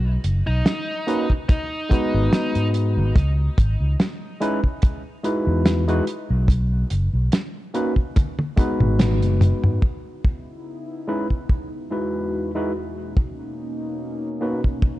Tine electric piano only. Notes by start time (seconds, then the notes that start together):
1.07 A#3 C#4 D#4 F#4 B4
1.89 G#3 B3 D#4 F#4 B4
4.40 G#3 C#4 D#4 E4 B4
5.23 G#3 D#4 E4 F#4 B4
5.88 G#3 D#4 E4 F#4 B4
7.74 A#3 C#4 D#4 F#4 B4
8.56 G#3 B3 D#4 F#4 B4
11.07 G#3 C#4 D#4 E4 B4
11.91 G#3 D#4 E4 F#4 B4
12.55 G#3 D#4 E4 F#4 B4
14.41 A#3 C#4 D#4 F#4 B4